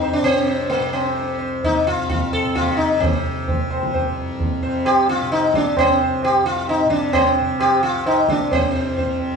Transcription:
Already playing: C2 F2 C3 D#4
0.02 C5
0.13 D4
0.22 C3 C4, tabla tin
0.46 C5
0.70 A#3, tabla tin
0.78 C3
0.93 C4, tabla na
1.16 C5, tabla tin
1.34 C2
1.39 C5
1.63 D#4, tabla tin, tabla ge
1.87 F2 F4
2.09 F4, tabla tin, tabla ge
2.32 A4, tabla na
2.44 C3
2.55 F4, tabla na, tabla ge
2.71 F4
2.77 D#4, tabla te
2.99 C3 C4, tabla tin, tabla ge
3.48 tabla tin, tabla ge
3.55 C2
3.70 C5, tabla na
3.83 tabla ke
3.93 C5, tabla tin, tabla ge
4.10 F2
4.40 tabla tin, tabla ge
4.62 C3 C5, tabla na
4.85 G4, tabla na
5.08 F4, tabla te
5.22 C3
5.31 D#4, tabla na
5.54 D4, tabla ke
5.76 C2 C4, tabla na, tabla ge
6.01 C5
6.23 G4, tabla na
6.31 F2
6.45 F4, tabla te
6.68 D#4, tabla na
6.85 C3
6.90 D4, tabla ke
7.13 C4, tabla na, tabla ge
7.38 C3 C5
7.60 G4, tabla na
7.83 F4, tabla te
7.95 C2
8.06 D#4, tabla na
8.29 D4, tabla ke
8.51 F2 C4 C5, tabla tin, tabla ge
8.72 C5
8.97 C5, tabla tin, tabla ge
9.06 C3
9.19 tabla na

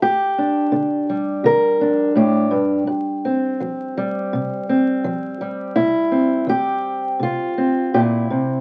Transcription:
0.02 G2 G4
0.38 D4
0.72 D3
1.09 G3
1.44 D3 A#4
1.81 D4
2.15 A2 G4
2.51 G2
2.87 F2
3.25 C4
3.60 F3
3.97 G3
4.33 C3
4.69 C4
5.04 F3
5.41 G3
5.76 C3 E4
6.11 C4
6.47 E3 G4
7.19 C3 F4
7.58 C4
7.94 A#2 E4 G4
8.30 C3

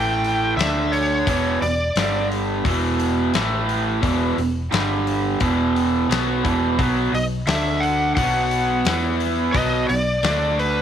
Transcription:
Already playing: A1 A2 E3 A3 G5
0.24 open hi-hat
0.56 D2 D3 A3 D4 E5, open hi-hat
0.61 snare
0.92 C#5, open hi-hat
1.27 E1 E2 B2 E3, kick, open hi-hat
1.61 E1 E2 B2 D5, open hi-hat
1.95 G1 G2 D3 G3, snare, open hi-hat
2.32 open hi-hat
2.65 E1 E2 B2 E3, kick, open hi-hat
3.00 open hi-hat
3.34 A1 A2 E3 A3, snare, open hi-hat
3.69 open hi-hat
4.02 E1 E2 B2 E3, kick, open hi-hat
4.37 E1 E2 B2, open hi-hat
4.71 G1 G2 D3 G3, snare, open hi-hat
5.07 open hi-hat
5.40 E1 E2 B2 E3, kick, open hi-hat
5.76 open hi-hat
6.09 B1 B2 F#3 B3, snare, open hi-hat
6.44 E1 E2 B2 E3, kick, open hi-hat
6.78 B1 B2 F#3 B3, kick, open hi-hat
7.12 B1 B2 F#3 D#5, open hi-hat
7.46 D2 D3 A3 D4 E5, snare, open hi-hat
7.80 F#5, open hi-hat
8.15 B1 B2 F#3 B3 F#5, kick, open hi-hat
8.51 open hi-hat
8.85 E2 E3 B3 E4, snare, open hi-hat
9.20 open hi-hat
9.52 B1 B2 F#3 B3 D#5, kick, open hi-hat
9.89 B1 B2 F#3 D5, open hi-hat
10.23 D2 D3 A3 D4, snare, open hi-hat
10.59 B4, open hi-hat

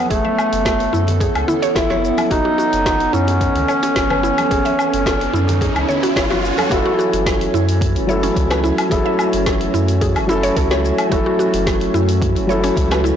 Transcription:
Already playing: E3 B3 C#4 A4 C#5
0.10 F#1 A3 G#4, kick, open hi-hat, shaker
0.25 E5, high conga
0.39 low woodblock, shaker
0.53 F#1, open hi-hat, shaker
0.65 A4, kick, snare, open hi-hat, shaker
0.80 open hi-hat
0.93 F#2 E4, high conga, shaker
1.07 open hi-hat, high bongo, low conga, shaker
1.20 G#4, kick, open hi-hat, shaker
1.35 C#2, open hi-hat, low woodblock
1.48 E4, low conga, shaker
1.62 C#5, open hi-hat, high bongo, shaker
1.76 F#1 E4 A4, kick, snare, open hi-hat, shaker
1.90 C#5, snare, high bongo, high conga
2.05 shaker
2.18 open hi-hat, high bongo, high conga, low woodblock, shaker
2.31 F#1 D#4 F#4, kick, open hi-hat, riser, shaker
2.45 F#4, high conga
2.58 F#4, shaker
2.73 F#1, open hi-hat, shaker
2.86 kick, snare, open hi-hat, shaker
3.00 open hi-hat
3.13 F#2 C#4 E4, shaker
3.27 open hi-hat, high bongo, shaker
3.41 kick, open hi-hat, shaker
3.55 C#2, open hi-hat, high bongo, low conga
3.68 C#5, high conga, low woodblock, shaker
3.83 C#4, open hi-hat, high bongo, shaker
3.96 F#1, kick, snare, open hi-hat, shaker
4.10 B4, high conga, low conga, low woodblock
4.23 E4, shaker
4.38 open hi-hat, high bongo, high conga, low woodblock, shaker
4.51 F#1 G#4, kick, open hi-hat, shaker
4.65 E5, open hi-hat, high conga
4.79 low woodblock, shaker
4.93 F#1, open hi-hat, shaker
5.06 A4, kick, snare, open hi-hat, shaker
5.21 open hi-hat
5.33 F#2 E4, high conga, shaker
5.48 open hi-hat, high bongo, low conga, shaker
5.61 G#4, kick, open hi-hat, shaker
5.75 C#2, open hi-hat, low woodblock
5.89 C#5, low conga, shaker
6.03 F#4, open hi-hat, high bongo, shaker
6.16 F#1 C#5, kick, snare, open hi-hat, shaker
6.31 F#4, snare, high bongo, high conga
6.45 shaker
6.58 A4, open hi-hat, high bongo, high conga, low woodblock, shaker
6.70 F#1 F#3 E4 F#4 A4, kick, open hi-hat, shaker
6.83 A3 F#4
6.99 F#4, shaker
7.09 F#4
7.13 F#1, open hi-hat, shaker
7.26 kick, snare, open hi-hat, shaker
7.41 open hi-hat
7.54 F#2 E4, shaker
7.69 open hi-hat, shaker
7.81 kick, open hi-hat, shaker
7.96 F#1, open hi-hat
8.07 F#3 E4 A4 C#5, shaker
8.23 C#4, open hi-hat, shaker
8.36 C#2, kick, open hi-hat, shaker
8.51 B4, snare, low woodblock
8.64 E4, shaker
8.78 open hi-hat, low woodblock, shaker
8.90 F#1 F#3 E4 G#4, kick, open hi-hat, shaker
8.94 A4
9.06 E5
9.19 low woodblock, shaker
9.33 F#1, open hi-hat, shaker
9.46 A4, kick, snare, open hi-hat, shaker
9.61 open hi-hat
9.74 F#2 E4, shaker
9.88 open hi-hat, shaker
10.01 G#4, kick, open hi-hat, shaker
10.16 F#1, open hi-hat, low woodblock
10.27 F#3 E4, shaker
10.31 A4
10.43 C#5, open hi-hat, shaker
10.56 C#2 A4, kick, open hi-hat, shaker
10.71 C#5, snare
10.85 shaker
10.98 open hi-hat, low woodblock, shaker
11.10 F#1 F#3 E4 F#4 A4, kick, open hi-hat, shaker
11.26 F#4
11.39 F#4, shaker
11.53 F#1, open hi-hat, shaker
11.67 kick, snare, open hi-hat, shaker
11.81 open hi-hat
11.94 F#2 E4, shaker
12.09 open hi-hat, shaker
12.22 kick, open hi-hat, shaker
12.36 F#1, open hi-hat
12.47 F#3 E4 A4 C#5, shaker
12.64 C#4, open hi-hat, shaker
12.77 C#2, kick, open hi-hat, shaker
12.91 B4, snare, low woodblock
13.04 E4, shaker

